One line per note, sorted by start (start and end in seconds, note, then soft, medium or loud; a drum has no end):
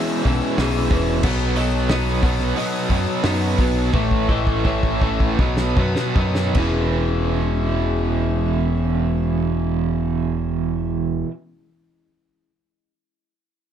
0.00 0.24 E2 loud
0.00 0.24 B2 loud
0.00 0.25 E3 loud
0.00 0.25 E3 medium
0.00 1.24 G#3 medium
0.00 0.24 C#4 medium
0.00 0.57 G#4 medium
0.00 0.58 B4 medium
0.00 1.22 C#5 medium
0.00 0.58 E5 medium
0.00 1.21 G#5 medium
0.00 1.19 E6 medium
0.25 0.40 B1 loud
0.25 0.57 E2 medium
0.25 0.58 B2 loud
0.25 0.58 E3 loud
0.25 0.90 C#4 medium
0.25 kick medium
0.25 open hi-hat medium
0.58 0.88 B1 loud
0.58 0.89 E2 loud
0.58 0.90 B2 loud
0.58 0.90 E3 loud
0.58 1.24 G#4 medium
0.58 snare loud
0.58 open hi-hat loud
0.91 1.20 E1 loud
0.91 1.22 E2 medium
0.91 1.22 B2 loud
0.91 1.22 E3 loud
0.91 1.24 C#4 medium
0.91 1.24 B4 medium
0.91 kick medium
0.91 open hi-hat medium
1.22 2.52 B1 loud
1.22 1.55 B2 loud
1.22 2.90 B2 medium
1.22 1.56 F#3 loud
1.22 1.56 B3 loud
1.22 3.91 B4 medium
1.22 3.90 A5 medium
1.22 3.90 D#6 medium
1.22 kick loud
1.22 crash loud
1.56 1.89 B2 medium
1.56 1.89 F#3 medium
1.56 1.90 B3 loud
1.56 3.24 A4 medium
1.56 1.90 D#5 loud
1.56 open hi-hat medium
1.89 2.21 B2 loud
1.89 2.22 F#3 loud
1.89 2.23 B3 loud
1.89 3.22 D#4 medium
1.89 2.56 C#5 medium
1.89 snare loud
1.89 open hi-hat medium
2.23 2.55 B2 medium
2.23 2.56 F#3 loud
2.23 2.89 B3 medium
2.23 2.56 B3 loud
2.23 kick loud
2.23 snare soft
2.23 open hi-hat medium
2.40 snare soft
2.56 2.89 B2 loud
2.56 3.94 F#3 medium
2.56 2.90 F#3 loud
2.56 2.90 B3 loud
2.56 3.24 D#5 medium
2.56 open hi-hat medium
2.90 3.05 F#2 loud
2.90 3.23 B2 medium
2.90 3.23 F#3 loud
2.90 3.58 B3 medium
2.90 3.24 B3 loud
2.90 kick medium
2.90 open hi-hat medium
3.23 3.55 F#2 loud
3.23 3.57 B2 medium
3.23 3.58 F#3 loud
3.23 3.58 B3 loud
3.23 3.93 D#4 medium
3.23 snare loud
3.23 open hi-hat medium
3.58 3.90 B1 loud
3.58 3.91 B2 medium
3.58 3.92 F#3 medium
3.58 3.94 B3 medium
3.58 3.92 B3 loud
3.58 3.95 B4 medium
3.58 kick medium
3.58 open hi-hat medium
3.93 5.35 A1 loud
3.93 5.38 A2 medium
3.93 4.28 A2 loud
3.93 4.29 E3 loud
3.93 4.29 A3 loud
3.93 5.38 A4 medium
3.93 5.38 G#5 medium
3.93 5.38 C#6 medium
3.93 kick loud
4.11 kick medium
4.29 4.63 A2 medium
4.29 4.64 E3 medium
4.29 4.65 A3 loud
4.29 5.39 A4 medium
4.29 4.65 D#5 medium
4.29 kick medium
4.47 kick medium
4.65 5.01 A2 loud
4.65 5.02 E3 loud
4.65 5.02 A3 loud
4.65 5.39 E4 medium
4.65 5.39 C#5 medium
4.65 kick medium
4.83 kick medium
5.01 5.37 A2 medium
5.01 5.37 E3 medium
5.01 5.37 A3 loud
5.01 5.39 C#4 medium
5.01 kick medium
5.20 kick medium
5.38 5.73 B1 loud
5.38 6.55 B2 medium
5.38 5.77 B2 loud
5.38 5.78 F#3 loud
5.38 5.78 B3 loud
5.38 6.54 B4 medium
5.38 6.16 D#5 medium
5.38 6.54 A5 medium
5.38 6.54 D#6 medium
5.38 kick loud
5.57 snare medium
5.77 5.94 F#2 loud
5.77 6.15 B2 medium
5.77 6.15 F#3 loud
5.77 6.55 B3 medium
5.77 6.16 B3 loud
5.77 kick loud
5.96 snare medium
6.16 6.51 F#2 loud
6.16 6.56 B2 medium
6.16 6.56 F#3 medium
6.16 6.56 B3 loud
6.16 6.55 D#4 medium
6.16 kick loud
6.35 snare medium
6.53 11.23 E1 loud
6.53 11.27 E2 medium
6.53 11.25 E3 loud
6.53 11.26 G#3 loud
6.53 11.00 C#4 medium
6.53 11.27 C#4 loud
6.53 11.00 G#4 medium
6.53 11.28 G#4 loud
6.53 11.00 E5 medium
6.53 kick loud
6.53 crash medium
6.57 11.29 B2 loud
6.57 11.31 E3 loud
6.57 7.38 E4 medium
6.57 11.29 B4 loud